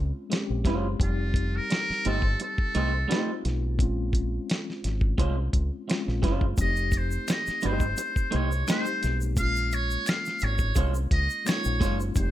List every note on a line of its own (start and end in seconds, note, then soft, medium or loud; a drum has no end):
0.00 0.11 C#2 medium
0.00 0.29 G#3 medium
0.00 0.31 C4 medium
0.00 0.32 C#4 medium
0.00 1.01 F4 medium
0.29 0.90 G#3 medium
0.29 0.90 C4 medium
0.29 0.91 C#4 medium
0.29 0.92 G4 medium
0.29 muted clean electric guitar stroke soft
0.29 snare medium
0.29 closed hi-hat medium
0.50 0.63 A#1 medium
0.65 0.94 F#1 medium
0.65 0.86 G#3 medium
0.65 0.86 C#4 medium
0.65 0.86 F4 medium
0.65 0.87 C5 medium
0.65 kick medium
0.65 snare soft
0.65 closed hi-hat medium
0.99 1.58 F1 medium
0.99 1.04 G3 medium
0.99 2.20 C4 medium
0.99 2.20 D#4 medium
0.99 2.21 G4 medium
0.99 kick loud
0.99 closed hi-hat medium
1.03 2.22 G3 medium
1.03 1.58 F4 medium
1.34 kick medium
1.34 closed hi-hat medium
1.56 2.09 A#4 loud
1.70 muted clean electric guitar stroke soft
1.70 snare loud
1.70 closed hi-hat medium
1.90 muted fingered electric bass stroke soft
1.90 snare soft
2.05 2.35 G1 medium
2.05 2.21 A3 medium
2.05 2.22 D#4 medium
2.05 2.22 G4 medium
2.05 2.41 A4 medium
2.05 2.22 C5 medium
2.05 closed hi-hat medium
2.22 kick medium
2.40 3.41 A4 medium
2.40 muted clean electric guitar stroke soft
2.40 closed hi-hat medium
2.58 kick medium
2.75 3.04 C2 medium
2.75 2.91 A3 medium
2.75 2.91 D#4 medium
2.75 2.92 G4 medium
2.75 2.92 C5 medium
2.75 closed hi-hat medium
3.08 3.29 A3 medium
3.08 3.69 A3 medium
3.08 3.69 C4 medium
3.08 3.30 D#4 medium
3.08 3.70 D#4 medium
3.08 3.70 F4 medium
3.08 3.30 G4 medium
3.08 3.30 C5 medium
3.08 closed hi-hat medium
3.12 snare medium
3.45 3.80 B1 medium
3.45 snare soft
3.45 closed hi-hat medium
3.78 4.38 A#1 medium
3.78 4.98 G#3 medium
3.78 4.99 C4 medium
3.78 5.00 C#4 medium
3.78 kick loud
3.78 closed hi-hat medium
3.83 5.01 F4 medium
4.13 kick medium
4.13 closed hi-hat medium
4.50 snare loud
4.50 closed hi-hat medium
4.70 snare soft
4.84 5.13 G#1 medium
4.84 snare soft
4.84 closed hi-hat medium
5.01 kick medium
5.18 5.48 C2 medium
5.18 5.35 G#3 medium
5.18 5.35 C#4 medium
5.18 5.35 F4 medium
5.18 5.35 C5 medium
5.18 kick medium
5.18 closed hi-hat medium
5.53 5.69 C#2 medium
5.53 kick medium
5.53 closed hi-hat medium
5.87 6.48 G#3 medium
5.87 6.48 C4 medium
5.87 6.49 C#4 medium
5.87 6.50 F4 medium
5.87 muted clean electric guitar stroke soft
5.87 snare medium
5.87 closed hi-hat medium
6.08 6.21 A#1 medium
6.08 snare soft
6.22 6.53 F#1 medium
6.22 6.43 G#3 medium
6.22 6.44 C#4 medium
6.22 6.44 F4 medium
6.22 6.44 C5 medium
6.22 kick medium
6.22 snare soft
6.22 closed hi-hat medium
6.41 kick medium
6.57 7.17 F1 medium
6.57 6.65 G3 medium
6.57 7.78 C4 medium
6.57 7.79 D#4 medium
6.57 6.99 D#5 medium
6.57 kick medium
6.57 closed hi-hat medium
6.57 shaker medium
6.62 7.81 A3 medium
6.62 7.80 G4 medium
6.76 shaker soft
6.92 kick medium
6.92 closed hi-hat medium
6.92 shaker soft
6.97 7.33 C5 medium
7.11 shaker soft
7.28 7.68 D#5 medium
7.28 finger snap medium
7.28 muted clean electric guitar stroke soft
7.28 snare loud
7.28 closed hi-hat medium
7.28 shaker medium
7.47 muted fingered electric bass stroke soft
7.47 snare soft
7.47 shaker soft
7.61 7.93 G1 medium
7.61 7.83 A3 medium
7.61 7.84 D#4 medium
7.61 7.84 G4 medium
7.61 7.84 C5 medium
7.61 closed hi-hat medium
7.61 shaker soft
7.66 8.37 C5 medium
7.80 kick medium
7.80 shaker soft
7.97 muted clean electric guitar stroke soft
7.97 closed hi-hat medium
7.97 shaker medium
8.16 kick medium
8.16 shaker soft
8.31 8.63 C2 medium
8.31 8.48 A3 medium
8.31 8.49 D#4 medium
8.31 8.49 G4 medium
8.31 8.49 C5 medium
8.31 closed hi-hat medium
8.36 8.69 C#5 medium
8.52 shaker soft
8.67 8.74 G3 medium
8.67 8.84 A3 medium
8.67 9.28 C4 medium
8.67 8.84 D#4 medium
8.67 9.28 D#4 medium
8.67 8.84 G4 medium
8.67 9.29 G4 medium
8.67 8.85 C5 medium
8.67 9.18 C5 medium
8.67 finger snap medium
8.67 snare loud
8.67 closed hi-hat medium
8.67 shaker medium
8.73 9.30 A3 medium
8.86 shaker soft
9.03 9.38 B1 medium
9.03 snare soft
9.03 closed hi-hat medium
9.03 shaker soft
9.21 shaker soft
9.36 9.96 A#1 medium
9.36 10.57 G#3 medium
9.36 10.58 A#3 medium
9.36 10.58 C#4 medium
9.36 9.76 F5 loud
9.36 kick loud
9.36 closed hi-hat medium
9.36 shaker medium
9.40 10.59 F4 medium
9.56 shaker soft
9.72 10.10 C#5 medium
9.72 closed hi-hat medium
9.72 shaker soft
9.91 shaker soft
10.06 10.45 F5 medium
10.06 finger snap medium
10.06 snare loud
10.06 closed hi-hat medium
10.06 shaker medium
10.25 snare soft
10.25 shaker soft
10.39 10.71 G#1 medium
10.39 closed hi-hat medium
10.39 shaker soft
10.44 10.86 C#5 medium
10.58 kick medium
10.58 shaker soft
10.75 11.06 C2 medium
10.75 10.92 G#3 medium
10.75 10.93 C#4 medium
10.75 10.93 F4 medium
10.75 10.94 C5 medium
10.75 kick medium
10.75 closed hi-hat medium
10.75 shaker medium
10.95 shaker soft
11.11 11.27 C#2 medium
11.11 11.50 D#5 medium
11.11 kick medium
11.11 closed hi-hat medium
11.30 shaker soft
11.45 12.06 G#3 medium
11.45 12.06 A#3 medium
11.45 12.07 C#4 medium
11.45 11.54 D#4 medium
11.45 12.00 C#5 medium
11.45 finger snap medium
11.45 muted clean electric guitar stroke soft
11.45 closed hi-hat medium
11.45 shaker medium
11.49 snare loud
11.55 12.11 F4 medium
11.64 11.79 A#1 medium
11.64 shaker soft
11.80 12.11 F#1 medium
11.80 11.97 G#3 medium
11.80 11.98 C#4 medium
11.80 11.98 F4 medium
11.80 11.98 C5 medium
11.80 kick medium
11.80 snare soft
11.80 closed hi-hat medium
11.80 shaker soft
12.00 shaker soft
12.15 12.31 F1 medium
12.15 12.23 G3 medium
12.15 12.31 C4 medium
12.15 12.31 D#4 medium
12.15 12.31 C5 medium
12.15 kick medium
12.15 closed hi-hat medium
12.15 shaker medium
12.20 12.31 A3 medium
12.20 12.31 G4 medium